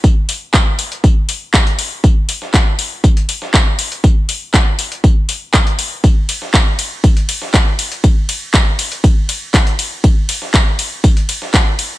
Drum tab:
RD |----------------|----------------|----------------|x-x-x-x-x-x-x-x-|
HH |--o---ox--o--xo-|--o---o--xo---ox|--o---ox--o--xo-|--o---o--xo---ox|
TB |x-x-x-x-x-x-x-x-|x-x-x-x-x-x-x-x-|x-x-x-x-x-x-x-x-|x-x-x-x-x-x-x-x-|
CP |----x-------x---|----x-------x---|----x-------x---|----x-------x---|
SD |----o-------o---|---oo------oo---|----o-------o---|---oo------oo---|
BD |o---o---o---o---|o---o---o---o---|o---o---o---o---|o---o---o---o---|

RD |x-x-x-x-x-x-x-x-|x-x-x-x-x-x-x-x-|
HH |--o---ox--o--xo-|--o---o--xo---o-|
TB |x-x-x-x-x-x-x-x-|x-x-x-x-x-x-x---|
CP |----x-------x---|----x-------x---|
SD |----o-------o---|---oo------oo---|
BD |o---o---o---o---|o---o---o---o---|